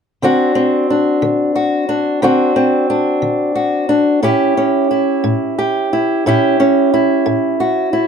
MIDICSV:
0, 0, Header, 1, 2, 480
1, 0, Start_track
1, 0, Key_signature, 2, "major"
1, 0, Tempo, 669643
1, 157, Time_signature, 12, 3, 24, 8
1, 5787, End_track
2, 0, Start_track
2, 0, Title_t, "Steel-string acoustic guitar"
2, 0, Program_c, 0, 25
2, 160, Note_on_c, 0, 50, 64
2, 165, Note_on_c, 0, 60, 55
2, 170, Note_on_c, 0, 62, 55
2, 175, Note_on_c, 0, 66, 59
2, 387, Note_off_c, 0, 60, 0
2, 395, Note_on_c, 0, 60, 57
2, 591, Note_off_c, 0, 50, 0
2, 639, Note_off_c, 0, 62, 0
2, 648, Note_on_c, 0, 62, 48
2, 875, Note_on_c, 0, 50, 72
2, 1106, Note_off_c, 0, 66, 0
2, 1115, Note_on_c, 0, 66, 54
2, 1309, Note_off_c, 0, 50, 0
2, 1344, Note_off_c, 0, 62, 0
2, 1353, Note_on_c, 0, 62, 50
2, 1587, Note_off_c, 0, 60, 0
2, 1592, Note_off_c, 0, 62, 0
2, 1592, Note_on_c, 0, 50, 71
2, 1596, Note_off_c, 0, 66, 0
2, 1596, Note_on_c, 0, 60, 57
2, 1601, Note_on_c, 0, 62, 53
2, 1606, Note_on_c, 0, 66, 60
2, 1826, Note_off_c, 0, 60, 0
2, 1834, Note_on_c, 0, 60, 54
2, 2027, Note_off_c, 0, 50, 0
2, 2069, Note_off_c, 0, 62, 0
2, 2077, Note_on_c, 0, 62, 54
2, 2308, Note_on_c, 0, 50, 69
2, 2539, Note_off_c, 0, 66, 0
2, 2548, Note_on_c, 0, 66, 54
2, 2745, Note_off_c, 0, 50, 0
2, 2779, Note_off_c, 0, 62, 0
2, 2788, Note_on_c, 0, 62, 54
2, 3004, Note_off_c, 0, 62, 0
2, 3008, Note_off_c, 0, 60, 0
2, 3028, Note_on_c, 0, 45, 68
2, 3031, Note_on_c, 0, 61, 58
2, 3033, Note_off_c, 0, 66, 0
2, 3035, Note_on_c, 0, 64, 57
2, 3041, Note_on_c, 0, 67, 61
2, 3270, Note_off_c, 0, 61, 0
2, 3278, Note_on_c, 0, 61, 56
2, 3465, Note_off_c, 0, 45, 0
2, 3509, Note_off_c, 0, 64, 0
2, 3518, Note_on_c, 0, 64, 49
2, 3754, Note_on_c, 0, 45, 69
2, 4000, Note_off_c, 0, 67, 0
2, 4003, Note_on_c, 0, 67, 54
2, 4188, Note_off_c, 0, 45, 0
2, 4238, Note_off_c, 0, 64, 0
2, 4250, Note_on_c, 0, 64, 51
2, 4478, Note_off_c, 0, 61, 0
2, 4484, Note_off_c, 0, 64, 0
2, 4488, Note_on_c, 0, 45, 72
2, 4493, Note_on_c, 0, 61, 57
2, 4498, Note_on_c, 0, 64, 57
2, 4502, Note_off_c, 0, 67, 0
2, 4504, Note_on_c, 0, 67, 63
2, 4721, Note_off_c, 0, 61, 0
2, 4730, Note_on_c, 0, 61, 54
2, 4915, Note_off_c, 0, 45, 0
2, 4963, Note_off_c, 0, 64, 0
2, 4972, Note_on_c, 0, 64, 60
2, 5202, Note_on_c, 0, 45, 73
2, 5446, Note_off_c, 0, 67, 0
2, 5449, Note_on_c, 0, 66, 54
2, 5632, Note_off_c, 0, 45, 0
2, 5675, Note_off_c, 0, 64, 0
2, 5684, Note_on_c, 0, 64, 51
2, 5787, Note_off_c, 0, 61, 0
2, 5787, Note_off_c, 0, 64, 0
2, 5787, Note_off_c, 0, 66, 0
2, 5787, End_track
0, 0, End_of_file